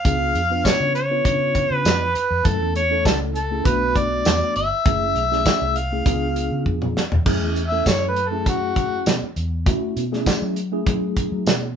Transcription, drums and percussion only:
0.05 kick loud
0.05 closed hi-hat medium
0.35 closed hi-hat medium
0.65 kick medium
0.65 snare loud
0.65 closed hi-hat medium
0.65 tambourine loud
0.95 closed hi-hat medium
1.25 kick medium
1.25 closed hi-hat medium
1.55 kick medium
1.55 closed hi-hat medium
1.85 snare loud
1.85 closed hi-hat medium
1.85 tambourine loud
2.15 closed hi-hat medium
2.45 kick loud
2.45 closed hi-hat medium
2.75 closed hi-hat medium
3.05 kick medium
3.05 snare loud
3.05 closed hi-hat medium
3.05 tambourine loud
3.35 closed hi-hat medium
3.65 kick medium
3.65 closed hi-hat medium
3.96 kick medium
3.96 closed hi-hat medium
4.25 snare loud
4.25 closed hi-hat medium
4.25 tambourine loud
4.56 closed hi-hat medium
4.86 kick loud
4.86 closed hi-hat medium
5.16 closed hi-hat medium
5.32 snare soft
5.46 kick medium
5.46 snare loud
5.46 closed hi-hat medium
5.46 tambourine loud
5.76 closed hi-hat medium
6.06 kick medium
6.06 closed hi-hat medium
6.36 closed hi-hat medium
6.66 kick medium
6.82 mid tom medium
6.97 snare medium
7.12 floor tom medium
7.26 kick loud
7.26 crash medium
7.56 closed hi-hat medium
7.86 kick medium
7.86 snare loud
7.86 closed hi-hat medium
7.86 tambourine loud
8.16 closed hi-hat medium
8.46 kick medium
8.46 closed hi-hat medium
8.76 kick medium
8.76 closed hi-hat medium
9.06 snare loud
9.06 closed hi-hat medium
9.06 tambourine loud
9.36 closed hi-hat medium
9.66 kick loud
9.66 closed hi-hat medium
9.97 closed hi-hat medium
10.13 snare soft
10.26 kick medium
10.26 snare loud
10.26 closed hi-hat medium
10.26 tambourine loud
10.56 closed hi-hat medium
10.86 kick medium
10.86 closed hi-hat medium
11.17 kick medium
11.17 closed hi-hat medium
11.46 snare loud
11.46 closed hi-hat medium
11.46 tambourine loud

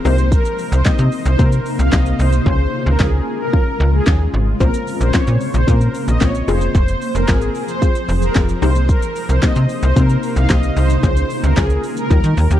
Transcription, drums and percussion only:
0.05 open hi-hat medium
0.05 shaker medium
0.18 closed hi-hat medium
0.18 shaker medium
0.32 kick loud
0.32 shaker medium
0.45 closed hi-hat medium
0.45 shaker medium
0.59 open hi-hat medium
0.59 shaker medium
0.72 closed hi-hat medium
0.72 shaker medium
0.85 kick loud
0.85 snare medium
0.85 clap medium
0.85 clap loud
0.85 shaker medium
0.99 closed hi-hat medium
0.99 shaker medium
1.12 open hi-hat medium
1.12 shaker medium
1.25 closed hi-hat medium
1.25 shaker medium
1.39 kick loud
1.39 shaker medium
1.52 closed hi-hat medium
1.52 shaker medium
1.66 open hi-hat medium
1.66 shaker medium
1.79 closed hi-hat medium
1.79 shaker medium
1.93 kick loud
1.93 snare medium
1.93 clap loud
1.93 shaker medium
2.06 closed hi-hat medium
2.06 shaker medium
2.20 open hi-hat medium
2.20 shaker medium
2.33 closed hi-hat medium
2.33 shaker medium
2.46 kick loud
3.00 kick loud
3.00 snare medium
3.00 clap medium
3.00 clap loud
3.53 kick loud
4.07 kick loud
4.07 snare medium
4.07 clap loud
4.07 clap medium
4.60 kick loud
4.60 shaker medium
4.74 closed hi-hat medium
4.74 shaker medium
4.87 open hi-hat medium
4.87 shaker medium
5.01 closed hi-hat medium
5.01 shaker medium
5.14 kick loud
5.14 snare medium
5.14 clap medium
5.14 clap loud
5.14 shaker medium
5.27 closed hi-hat medium
5.27 shaker medium
5.41 open hi-hat medium
5.41 shaker medium
5.54 closed hi-hat medium
5.54 shaker medium
5.68 kick loud
5.68 shaker medium
5.81 closed hi-hat medium
5.81 shaker medium
5.94 open hi-hat medium
5.94 shaker medium
6.08 closed hi-hat medium
6.08 shaker medium
6.21 kick loud
6.21 snare medium
6.21 clap loud
6.21 clap medium
6.21 shaker medium
6.35 closed hi-hat medium
6.35 shaker medium
6.48 open hi-hat medium
6.48 shaker medium
6.61 closed hi-hat medium
6.61 shaker medium
6.75 kick loud
6.75 shaker medium
6.88 closed hi-hat medium
6.88 shaker medium
7.02 open hi-hat medium
7.02 shaker medium
7.15 closed hi-hat medium
7.15 shaker medium
7.28 kick loud
7.28 snare medium
7.28 clap medium
7.28 clap loud
7.28 shaker medium
7.41 closed hi-hat medium
7.41 shaker medium
7.55 open hi-hat medium
7.55 shaker medium
7.68 closed hi-hat medium
7.68 shaker medium
7.82 kick loud
7.82 shaker medium
7.95 closed hi-hat medium
7.95 shaker medium
8.09 open hi-hat medium
8.09 shaker medium
8.22 closed hi-hat medium
8.22 shaker medium
8.35 kick loud
8.35 snare medium
8.35 clap loud
8.35 clap medium
8.35 shaker medium
8.49 closed hi-hat medium
8.49 shaker medium
8.62 open hi-hat medium
8.62 shaker medium
8.75 closed hi-hat medium
8.75 shaker medium
8.89 kick loud
8.89 shaker medium
9.02 closed hi-hat medium
9.02 shaker medium
9.16 open hi-hat medium
9.16 shaker medium
9.29 closed hi-hat medium
9.29 shaker medium
9.42 kick loud
9.42 snare medium
9.42 clap medium
9.42 clap loud
9.42 shaker medium
9.56 closed hi-hat medium
9.56 shaker medium
9.69 open hi-hat medium
9.69 shaker medium
9.83 closed hi-hat medium
9.83 shaker medium
9.96 kick loud
9.96 shaker medium
10.10 closed hi-hat medium
10.10 shaker medium
10.23 open hi-hat medium
10.23 shaker medium
10.36 closed hi-hat medium
10.36 shaker medium
10.50 kick loud
10.50 snare medium
10.50 clap loud
10.50 clap medium
10.50 shaker medium
10.63 closed hi-hat medium
10.63 shaker medium
10.77 open hi-hat medium
10.77 shaker medium
10.90 closed hi-hat medium
10.90 shaker medium
11.03 kick loud
11.03 shaker medium
11.17 closed hi-hat medium
11.17 shaker medium
11.30 open hi-hat medium
11.30 shaker medium
11.44 closed hi-hat medium
11.44 shaker medium
11.57 kick loud
11.57 snare medium
11.57 clap medium
11.57 clap loud
11.57 shaker medium
11.70 closed hi-hat medium
11.70 shaker medium
11.83 open hi-hat medium
11.83 shaker medium
11.97 closed hi-hat medium
11.97 shaker medium
12.11 kick loud
12.11 shaker medium
12.24 closed hi-hat medium
12.24 shaker medium
12.37 open hi-hat medium
12.37 shaker medium
12.51 closed hi-hat medium
12.51 shaker medium

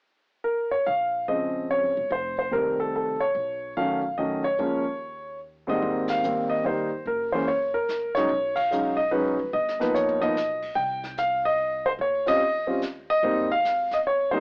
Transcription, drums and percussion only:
5.82 brush sweep soft
6.08 snare medium
6.08 ride medium
6.24 hi-hat pedal medium
7.07 brush sweep soft
7.88 snare soft
7.88 hi-hat pedal soft
8.16 snare soft
8.31 brush sweep soft
8.56 kick medium
8.56 ride medium
8.72 hi-hat pedal soft
9.69 snare soft
9.81 snare soft
9.95 hi-hat pedal medium
9.95 high tom medium
10.09 floor tom medium
10.22 floor tom medium
10.37 snare medium
10.37 hi-hat pedal soft
10.62 kick medium
10.62 crash medium
10.77 brush sweep soft
11.04 snare soft
11.17 snare soft
11.17 hi-hat pedal soft
12.01 brush sweep soft
12.27 kick medium
12.27 ride medium
12.82 snare medium
12.82 hi-hat pedal soft
13.24 brush sweep soft
13.65 snare soft
13.65 hi-hat pedal medium
13.91 snare soft

